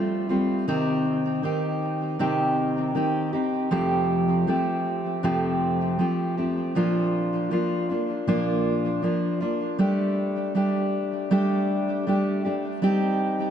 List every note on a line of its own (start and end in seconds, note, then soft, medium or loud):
0.00 0.30 G3 soft
0.00 0.29 A3 medium
0.00 0.29 C4 medium
0.00 0.28 F4 medium
0.29 0.67 G3 soft
0.29 0.68 A3 soft
0.29 0.67 C4 soft
0.29 0.68 F4 soft
0.68 1.44 C3 medium
0.68 1.42 D#3 medium
0.68 1.44 C4 medium
0.68 1.44 D#4 medium
0.68 1.45 G4 medium
1.43 2.19 D#3 medium
1.43 2.20 C4 medium
1.43 2.19 D#4 medium
1.43 2.20 G4 medium
2.19 2.96 C3 medium
2.19 2.94 D#3 medium
2.19 2.95 C4 medium
2.19 2.95 D#4 medium
2.19 2.97 G4 medium
2.95 3.33 D#3 medium
2.95 3.34 C4 medium
2.95 3.33 D#4 medium
2.95 3.32 G4 medium
3.33 3.71 C4 soft
3.33 3.72 D#4 soft
3.33 3.71 G4 soft
3.71 4.47 F2 medium
3.71 4.47 C3 medium
3.71 4.47 F3 medium
3.71 4.47 A3 medium
3.71 4.47 C4 medium
3.71 4.48 G4 medium
4.47 5.23 F3 medium
4.47 5.23 A3 medium
4.47 5.23 C4 medium
4.47 5.23 G4 medium
5.23 5.99 F2 medium
5.23 6.00 C3 medium
5.23 5.98 F3 medium
5.23 5.99 A3 medium
5.23 5.99 C4 medium
5.23 6.00 G4 medium
5.99 6.37 F3 soft
5.99 6.37 A3 soft
5.99 6.37 C4 medium
5.99 6.36 G4 soft
6.37 6.75 F3 soft
6.37 6.75 A3 soft
6.37 6.76 C4 soft
6.37 6.75 G4 soft
6.75 7.51 A#2 medium
6.75 7.50 F3 medium
6.75 7.50 A#3 medium
6.75 7.52 D4 medium
6.75 7.52 F4 medium
7.51 7.89 F3 medium
7.51 7.89 A#3 medium
7.51 7.89 D4 medium
7.51 7.88 F4 medium
7.89 8.27 A#3 soft
7.89 8.27 D4 soft
7.89 8.27 F4 soft
8.27 9.03 A#2 medium
8.27 9.01 F3 medium
8.27 9.02 A#3 medium
8.27 9.03 D4 medium
8.27 9.04 F4 medium
9.02 9.41 F3 medium
9.02 9.42 A#3 soft
9.02 9.41 D4 medium
9.02 9.39 F4 medium
9.41 9.79 A#3 soft
9.41 9.79 D4 soft
9.41 9.79 F4 soft
9.79 10.54 G3 medium
9.79 10.54 A3 medium
9.79 10.55 D4 medium
9.79 10.56 G4 medium
10.55 11.30 G3 medium
10.55 11.30 A3 medium
10.55 11.31 D4 medium
10.55 11.32 G4 medium
11.31 12.06 G3 medium
11.31 12.06 A3 medium
11.31 12.07 D4 medium
11.31 12.09 G4 medium
12.07 12.45 G3 soft
12.07 12.45 A3 medium
12.07 12.45 D4 medium
12.07 12.43 G4 medium
12.45 12.82 A3 soft
12.45 12.83 D4 soft
12.45 12.82 G4 medium
12.82 13.50 G3 medium
12.82 13.50 C4 medium
12.82 13.50 D#4 medium
12.82 13.50 G4 medium